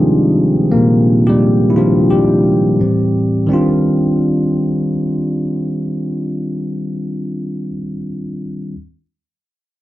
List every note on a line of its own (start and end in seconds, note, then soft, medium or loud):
0.00 0.35 C3 medium
0.00 1.77 D#3 medium
0.00 1.78 F3 medium
0.00 1.29 G3 medium
0.00 2.81 G#3 medium
0.00 0.34 C4 medium
0.00 1.78 D4 soft
0.00 2.81 D#4 medium
0.00 1.76 F4 medium
0.00 1.27 G4 medium
0.00 2.81 G#4 medium
0.72 1.24 A#2 medium
0.72 1.28 A#3 medium
1.27 1.68 G3 medium
1.27 1.71 G4 medium
1.70 1.76 E4 medium
1.76 2.75 D#3 soft
1.76 2.09 F3 medium
1.76 2.11 G3 soft
1.76 2.76 D4 medium
1.76 2.11 F4 medium
2.10 3.10 G3 medium
2.10 3.10 G4 medium
2.80 3.45 A2 soft
2.80 3.45 E3 soft
2.80 3.46 C4 medium
3.47 7.69 D#3 medium
3.47 7.70 G3 medium
3.47 7.71 C4 medium
3.52 7.72 D4 medium
3.52 7.72 F4 medium